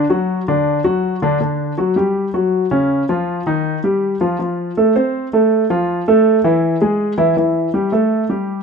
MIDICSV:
0, 0, Header, 1, 2, 480
1, 0, Start_track
1, 0, Tempo, 372671
1, 1812, Time_signature, 4, 2, 24, 8
1, 11114, End_track
2, 0, Start_track
2, 0, Title_t, "Grand piano"
2, 0, Program_c, 0, 0
2, 126, Note_on_c, 0, 54, 71
2, 132, Note_on_c, 0, 66, 71
2, 521, Note_off_c, 0, 54, 0
2, 525, Note_off_c, 0, 66, 0
2, 620, Note_on_c, 0, 50, 76
2, 621, Note_on_c, 0, 62, 75
2, 1010, Note_off_c, 0, 50, 0
2, 1011, Note_off_c, 0, 62, 0
2, 1085, Note_on_c, 0, 54, 62
2, 1087, Note_on_c, 0, 66, 69
2, 1482, Note_off_c, 0, 54, 0
2, 1483, Note_off_c, 0, 66, 0
2, 1575, Note_on_c, 0, 50, 79
2, 1580, Note_on_c, 0, 62, 79
2, 1771, Note_off_c, 0, 50, 0
2, 1774, Note_off_c, 0, 62, 0
2, 1811, Note_on_c, 0, 50, 59
2, 1820, Note_on_c, 0, 62, 56
2, 2206, Note_off_c, 0, 50, 0
2, 2211, Note_off_c, 0, 62, 0
2, 2288, Note_on_c, 0, 54, 63
2, 2295, Note_on_c, 0, 66, 61
2, 2488, Note_off_c, 0, 54, 0
2, 2492, Note_off_c, 0, 66, 0
2, 2525, Note_on_c, 0, 55, 66
2, 2538, Note_on_c, 0, 67, 69
2, 2924, Note_off_c, 0, 55, 0
2, 2931, Note_off_c, 0, 67, 0
2, 3012, Note_on_c, 0, 54, 58
2, 3016, Note_on_c, 0, 66, 63
2, 3408, Note_off_c, 0, 54, 0
2, 3410, Note_off_c, 0, 66, 0
2, 3493, Note_on_c, 0, 49, 77
2, 3494, Note_on_c, 0, 61, 75
2, 3889, Note_off_c, 0, 49, 0
2, 3890, Note_off_c, 0, 61, 0
2, 3981, Note_on_c, 0, 53, 71
2, 3985, Note_on_c, 0, 65, 71
2, 4374, Note_off_c, 0, 53, 0
2, 4377, Note_off_c, 0, 65, 0
2, 4463, Note_on_c, 0, 51, 75
2, 4468, Note_on_c, 0, 63, 75
2, 4856, Note_off_c, 0, 51, 0
2, 4859, Note_off_c, 0, 63, 0
2, 4942, Note_on_c, 0, 55, 61
2, 4951, Note_on_c, 0, 67, 66
2, 5336, Note_off_c, 0, 55, 0
2, 5341, Note_off_c, 0, 67, 0
2, 5419, Note_on_c, 0, 65, 67
2, 5421, Note_on_c, 0, 53, 70
2, 5617, Note_off_c, 0, 65, 0
2, 5618, Note_off_c, 0, 53, 0
2, 5657, Note_on_c, 0, 53, 57
2, 5665, Note_on_c, 0, 65, 55
2, 6053, Note_off_c, 0, 53, 0
2, 6058, Note_off_c, 0, 65, 0
2, 6149, Note_on_c, 0, 57, 62
2, 6150, Note_on_c, 0, 69, 63
2, 6343, Note_off_c, 0, 57, 0
2, 6344, Note_off_c, 0, 69, 0
2, 6385, Note_on_c, 0, 72, 68
2, 6390, Note_on_c, 0, 60, 61
2, 6777, Note_off_c, 0, 72, 0
2, 6781, Note_off_c, 0, 60, 0
2, 6868, Note_on_c, 0, 57, 63
2, 6876, Note_on_c, 0, 69, 60
2, 7259, Note_off_c, 0, 57, 0
2, 7264, Note_off_c, 0, 69, 0
2, 7344, Note_on_c, 0, 53, 72
2, 7347, Note_on_c, 0, 65, 73
2, 7736, Note_off_c, 0, 53, 0
2, 7738, Note_off_c, 0, 65, 0
2, 7830, Note_on_c, 0, 57, 74
2, 7831, Note_on_c, 0, 69, 73
2, 8219, Note_off_c, 0, 57, 0
2, 8220, Note_off_c, 0, 69, 0
2, 8299, Note_on_c, 0, 52, 79
2, 8304, Note_on_c, 0, 64, 73
2, 8692, Note_off_c, 0, 52, 0
2, 8695, Note_off_c, 0, 64, 0
2, 8778, Note_on_c, 0, 68, 65
2, 8779, Note_on_c, 0, 56, 67
2, 9170, Note_off_c, 0, 68, 0
2, 9171, Note_off_c, 0, 56, 0
2, 9244, Note_on_c, 0, 52, 76
2, 9248, Note_on_c, 0, 64, 80
2, 9445, Note_off_c, 0, 52, 0
2, 9448, Note_off_c, 0, 64, 0
2, 9489, Note_on_c, 0, 52, 63
2, 9495, Note_on_c, 0, 64, 61
2, 9884, Note_off_c, 0, 52, 0
2, 9887, Note_off_c, 0, 64, 0
2, 9966, Note_on_c, 0, 55, 69
2, 9974, Note_on_c, 0, 67, 61
2, 10165, Note_off_c, 0, 55, 0
2, 10169, Note_off_c, 0, 67, 0
2, 10203, Note_on_c, 0, 57, 70
2, 10212, Note_on_c, 0, 69, 64
2, 10598, Note_off_c, 0, 57, 0
2, 10603, Note_off_c, 0, 69, 0
2, 10683, Note_on_c, 0, 55, 64
2, 10690, Note_on_c, 0, 67, 61
2, 11077, Note_off_c, 0, 55, 0
2, 11081, Note_off_c, 0, 67, 0
2, 11114, End_track
0, 0, End_of_file